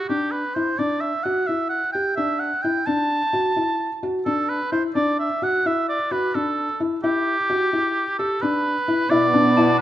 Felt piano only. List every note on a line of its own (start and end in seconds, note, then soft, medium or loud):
0.10 0.40 D4 medium
0.56 0.71 E4 medium
0.79 1.09 D4 medium
1.25 1.41 F#4 medium
1.49 1.79 E4 soft
1.95 2.10 G4 soft
2.17 2.48 D4 medium
2.64 2.80 E4 medium
2.87 3.18 D4 medium
3.33 3.49 F#4 medium
3.56 3.87 E4 medium
4.03 4.18 F#4 medium
4.26 4.57 D4 medium
4.72 4.88 E4 medium
4.95 5.26 D4 medium
5.42 5.57 F#4 medium
5.66 5.96 E4 medium
6.11 6.27 F#4 medium
6.35 6.65 D4 medium
6.80 6.96 E4 medium
7.04 7.34 E4 medium
7.50 7.65 F#4 medium
7.73 8.04 E4 medium
8.19 8.34 G4 medium
8.43 8.73 D4 medium
8.88 9.03 E4 medium
9.11 9.26 E4 medium
9.34 9.49 D4 medium
9.58 9.73 E4 medium